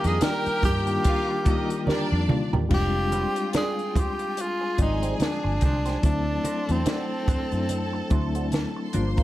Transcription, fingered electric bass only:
0.05 0.19 F2 medium
0.47 muted fingered electric bass stroke soft
0.63 0.97 G2 medium
1.88 muted fingered electric bass stroke soft
2.12 2.26 F2 medium
2.53 2.68 D#2 medium
2.71 3.24 F1 medium
4.79 5.13 G#1 medium
5.45 5.59 G1 medium
5.63 5.96 C2 medium
6.04 6.37 D2 medium
6.69 6.83 E2 medium
7.28 muted fingered electric bass stroke soft
7.53 8.00 F#2 medium
8.11 8.65 D2 medium
8.96 9.23 G1 medium

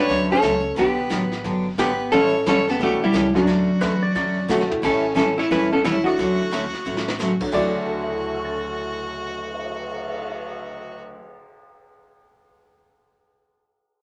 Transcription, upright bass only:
0.09 0.42 D2 medium
0.42 0.75 C#2 medium
0.77 1.10 B1 medium
1.10 1.43 A1 medium
1.44 1.77 G1 medium
1.78 2.11 G#1 medium
2.12 2.45 A1 medium
2.46 2.79 G1 medium
2.79 3.12 B1 medium
3.13 3.46 C#2 medium
3.47 3.80 D2 medium
3.82 4.14 E2 medium
4.15 4.48 F#2 medium
4.49 4.81 B2 medium
4.83 5.37 A1 medium
5.50 6.04 E1 medium
6.18 6.72 D2 medium
6.86 7.40 A1 medium
7.53 11.14 D2 medium

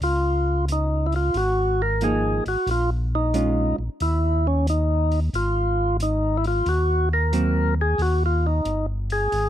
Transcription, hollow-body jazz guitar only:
2.02 2.42 F3 medium
2.02 2.42 A#3 medium
2.02 2.42 D#4 medium
3.34 3.74 G#3 soft
3.34 3.75 C#4 soft
3.34 3.75 F4 soft
7.33 7.73 F#3 soft
7.33 7.73 A#3 soft
7.33 7.73 C4 soft

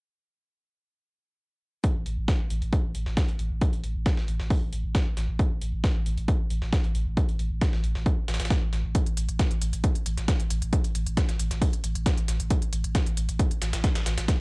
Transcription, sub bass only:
1.95 2.05 A1 medium
2.06 2.17 A1 medium
2.18 2.28 A1 medium
2.40 2.50 A1 medium
2.50 2.61 A1 loud
2.62 2.72 A1 medium
2.84 2.94 A1 medium
2.95 3.06 A1 loud
3.06 3.17 A1 medium
3.29 3.39 A1 medium
3.39 3.50 A1 loud
3.51 3.61 A1 medium
3.73 3.83 A1 medium
3.84 3.95 A1 medium
3.95 4.06 A1 medium
4.17 4.28 A1 medium
4.28 4.39 A1 loud
4.40 4.50 A1 medium
4.62 4.72 A1 medium
4.73 4.84 A1 loud
4.84 4.95 A1 medium
5.06 5.16 A1 medium
5.17 5.28 A1 loud
5.29 5.39 A1 medium
5.51 5.61 A1 medium
5.62 5.72 A1 loud
5.73 5.84 A1 medium
5.95 6.05 A1 medium
6.06 6.17 A1 loud
6.17 6.28 A1 medium
6.40 6.50 A1 medium
6.50 6.61 A1 loud
6.62 6.72 A1 medium
6.84 6.94 A1 medium
6.95 7.06 A1 loud
7.06 7.17 A1 medium
7.28 7.39 A1 medium
7.39 7.50 A1 loud
7.51 7.61 A1 medium
7.73 7.83 A1 medium
7.84 7.95 A1 loud
7.95 8.06 A1 medium
8.17 8.28 A1 medium
8.28 8.39 A1 loud
8.40 8.50 A1 medium
8.62 8.72 A1 medium
8.73 8.84 A1 loud
8.84 8.95 A1 medium
9.06 9.16 A1 medium
9.17 9.28 A1 loud
9.29 9.39 A1 medium
9.51 9.61 A1 medium
9.62 9.72 A1 loud
9.73 9.84 A1 medium
9.95 10.05 A1 medium
10.06 10.17 A1 loud
10.17 10.28 A1 medium
10.40 10.50 A1 medium
10.50 10.61 A1 loud
10.62 10.72 A1 medium
10.84 10.94 A1 medium
10.95 11.06 A1 loud
11.06 11.17 A1 medium
11.29 11.39 A1 medium
11.39 11.50 A1 loud
11.51 11.61 A1 medium
11.73 11.83 A1 medium
11.84 11.95 A1 loud
11.95 12.06 A1 medium
12.18 12.28 A1 medium
12.28 12.39 A1 loud
12.40 12.50 A1 medium
12.62 12.72 A1 medium
12.73 12.84 A1 loud
12.84 12.95 A1 medium
13.06 13.17 A1 medium
13.17 13.28 A1 medium
13.29 13.39 A1 medium
13.51 13.61 A1 medium
13.62 13.73 A1 loud
13.73 13.84 A1 medium
13.95 14.05 A1 medium
14.06 14.17 A1 loud
14.18 14.28 A1 medium

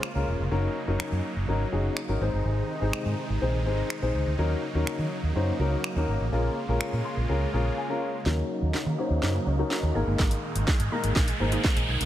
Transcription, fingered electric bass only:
0.15 0.23 C#2 medium
0.27 0.35 E1 medium
0.40 0.47 F1 medium
0.52 0.66 F#1 loud
0.88 0.95 F#1 medium
1.00 muted fingered electric bass stroke soft
1.12 1.19 F#2 loud
1.36 1.44 F#1 medium
1.48 1.63 G#1 medium
1.73 1.87 F#1 medium
2.09 2.16 G#1 medium
2.21 2.28 G#1 loud
2.33 2.41 G1 medium
2.45 2.60 G#1 loud
2.82 2.89 G#1 medium
3.05 3.13 G#2 loud
3.30 3.37 G#1 medium
3.42 3.66 A#1 medium
3.66 3.81 G#1 medium
4.02 4.10 A#1 medium
4.14 4.22 C#2 medium
4.26 4.34 D2 medium
4.38 4.53 D#2 loud
4.75 4.82 D#2 medium
4.99 5.06 D#3 medium
5.23 5.31 D#2 medium
5.35 5.50 F#2 medium
5.59 5.74 C#2 medium
5.96 6.03 D#2 medium
6.08 6.15 G#1 medium
6.20 6.27 A1 medium
6.32 6.47 A#1 medium
6.68 6.76 A#1 medium
6.93 7.00 A#2 medium
7.17 7.24 A#1 medium
7.29 7.44 C#2 medium
7.54 7.68 A#1 medium
8.26 8.41 D#2 loud
8.62 8.69 D#2 medium
8.74 muted fingered electric bass stroke soft
8.86 8.94 D#3 medium
9.10 9.18 D#2 medium
9.22 9.37 F#2 medium
9.46 9.61 C#2 loud
9.83 9.90 D#2 medium
9.95 10.02 G#1 medium
10.07 10.14 G1 medium
10.19 10.34 G#1 loud
10.55 10.63 G#1 medium
10.80 10.87 G#2 loud
11.04 11.11 G#1 medium
11.16 11.31 A#1 loud
11.40 11.55 G#1 medium
11.76 11.84 A#1 loud
11.88 11.96 B1 medium
12.00 12.05 C2 medium

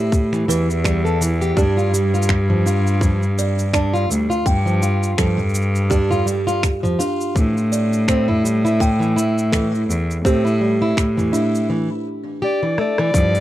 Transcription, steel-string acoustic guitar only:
0.00 0.12 E4 medium
0.33 0.47 E3 medium
0.48 0.68 E3 medium
0.85 1.03 G3 medium
1.05 1.19 A4 medium
1.21 1.39 E3 medium
1.41 1.56 G4 medium
1.57 1.76 D4 medium
1.77 1.92 F4 medium
1.94 2.12 G3 medium
2.14 2.29 F4 medium
2.50 2.64 F3 medium
2.66 3.01 F4 medium
3.02 3.21 F3 medium
3.74 3.92 D4 medium
3.94 4.08 F4 loud
4.09 4.28 G3 medium
4.30 4.45 F4 medium
4.66 4.81 F3 medium
4.82 5.17 F4 medium
5.18 5.38 F3 medium
5.91 6.09 D4 loud
6.11 6.25 F4 medium
6.26 6.45 G3 medium
6.47 6.62 F4 loud
6.83 6.98 F3 medium
6.99 7.34 F4 medium
7.35 7.55 E3 medium
8.08 8.26 C4 loud
8.28 8.43 E4 medium
8.44 8.63 G3 medium
8.65 8.80 E4 loud
9.00 9.15 E3 medium
9.16 9.51 E4 medium
9.52 9.72 E3 medium
10.25 10.43 C4 medium
10.45 10.59 E4 loud
10.61 10.79 G3 medium
10.82 10.97 E4 loud
11.17 11.32 E3 medium
11.33 11.68 E4 medium
11.70 11.89 E3 medium
12.42 12.60 G4 loud
12.63 12.77 E3 medium
12.78 12.96 A3 medium
12.99 13.14 E3 loud
13.14 13.34 F3 medium

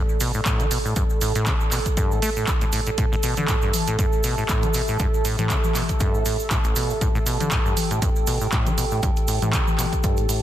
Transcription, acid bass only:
0.21 0.32 B2 medium
0.35 0.41 A2 medium
0.46 0.61 A2 medium
0.60 0.66 E3 medium
0.71 0.79 B2 medium
0.85 0.94 A2 medium
0.96 1.04 G2 medium
1.21 1.33 A2 medium
1.35 1.48 A2 loud
1.47 1.54 D3 medium
1.72 1.80 B2 medium
1.97 2.13 G2 medium
2.11 2.20 A2 loud
2.22 2.30 A3 loud
2.37 2.46 A2 medium
2.62 2.65 A2 medium
2.73 2.80 A2 medium
2.87 2.91 A2 medium
2.98 3.06 A2 medium
3.12 3.16 A2 loud
3.23 3.35 B2 medium
3.37 3.46 D3 medium
3.48 3.56 A2 medium
3.62 3.72 G2 medium
3.88 3.97 A2 medium
3.99 4.07 G2 medium
4.24 4.36 B2 medium
4.38 4.44 A2 medium
4.49 4.65 A2 medium
4.63 4.69 E3 medium
4.74 4.82 B2 medium
4.88 4.98 A2 medium
5.00 5.07 G2 medium
5.25 5.36 A2 medium
5.39 5.52 A2 loud
5.50 5.58 D3 medium
5.75 5.83 B2 medium
6.00 6.16 G2 medium
6.14 6.24 A2 loud
6.26 6.37 A2 medium
6.51 6.58 A2 medium
6.65 6.74 A1 medium
6.76 6.91 B2 medium
6.90 6.94 A2 medium
7.01 7.09 A2 medium
7.15 7.19 A2 loud
7.26 7.38 B2 medium
7.40 7.50 D3 medium
7.51 7.59 A2 medium
7.66 7.75 G2 medium
7.91 8.00 A2 medium
8.02 8.10 G2 medium
8.27 8.39 B2 medium
8.41 8.47 A2 medium
8.53 8.68 A2 medium
8.66 8.73 E3 medium
8.78 8.85 B2 medium
8.92 9.01 A2 medium
9.03 9.11 G2 medium
9.28 9.40 A2 medium
9.42 9.55 A2 loud
9.53 9.61 D3 medium
9.78 9.86 B2 medium
10.04 10.19 G2 medium
10.18 10.27 A2 loud
10.29 10.41 A2 medium

